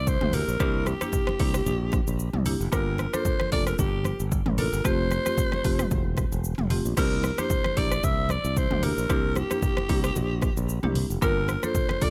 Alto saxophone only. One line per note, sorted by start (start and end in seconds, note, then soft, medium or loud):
0.08 0.36 C5 loud
0.34 0.89 A#4 loud
0.87 2.46 G4 loud
2.73 3.15 A#4 loud
3.14 3.52 C5 loud
3.52 3.66 D5 loud
3.67 3.78 A#4 medium
3.79 4.28 G4 medium
4.59 4.87 A#4 loud
4.85 6.44 C5 loud
6.98 7.40 A#4 loud
7.39 7.79 C5 loud
7.77 8.05 D5 loud
8.04 8.32 E5 loud
8.31 8.59 D5 loud
8.57 8.85 C5 loud
8.84 9.38 A#4 loud
9.37 10.96 G4 loud
11.23 11.65 A#4 loud
11.64 12.04 C5 loud
12.03 12.10 D5 loud